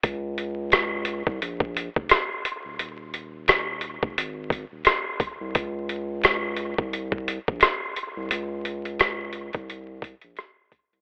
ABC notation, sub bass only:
X:1
M:4/4
L:1/16
Q:"Swing 16ths" 1/4=87
K:Bbm
V:1 name="Sub bass" clef=bass
D,,6- D,, C,, B,,,3 F,,, z3 =D,,, | E,,,6- E,,, F,,, A,,,3 E,,, z3 C,, | D,,6- D,, C,,4 B,,, z3 C,, | D,,6- D,, C,,4 B,,, z3 C,, |]